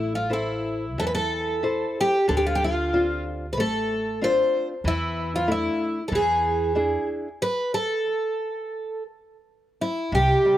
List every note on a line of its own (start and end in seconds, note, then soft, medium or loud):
0.00 0.97 A1 medium
0.00 0.28 A3 medium
0.00 0.15 E4 medium
0.15 0.32 F4 medium
0.30 0.84 E4 soft
0.30 1.01 E4 medium
0.30 0.84 A4 soft
0.30 0.84 C5 soft
0.97 1.83 E2 medium
0.97 1.62 E3 medium
0.97 1.05 A4 medium
1.07 1.12 B4 medium
1.15 2.00 A4 medium
1.63 2.15 E4 soft
1.63 2.16 A4 soft
1.63 2.16 C5 soft
2.01 2.26 G4 medium
2.28 3.58 D2 medium
2.28 2.91 D3 medium
2.28 2.36 A4 medium
2.37 2.44 G4 medium
2.46 2.54 F4 medium
2.55 2.62 G4 medium
2.64 3.23 F4 medium
2.93 3.45 C4 soft
2.93 3.45 D4 soft
2.93 3.45 F4 soft
3.53 3.58 B4 medium
3.57 4.41 A1 medium
3.57 4.20 A3 medium
3.57 4.19 A4 medium
4.21 4.72 C4 soft
4.21 4.73 D4 soft
4.21 4.73 F4 soft
4.21 4.67 C5 medium
4.84 5.67 E2 medium
4.84 5.46 E3 medium
4.84 5.35 E4 medium
5.36 5.49 F4 medium
5.47 5.99 A3 soft
5.47 5.99 D4 soft
5.47 5.99 E4 soft
5.52 6.03 E4 medium
6.08 6.95 E2 medium
6.08 6.13 A4 medium
6.12 6.74 E3 medium
6.12 7.06 G#4 medium
6.75 7.27 D4 soft
6.75 7.27 E4 soft
6.75 7.27 G#4 soft
7.42 7.74 B4 medium
7.74 9.03 A4 medium
9.81 10.14 E4 medium
10.12 10.33 C2 medium
10.12 10.58 C3 medium
10.12 10.58 G4 medium
10.45 10.58 G3 soft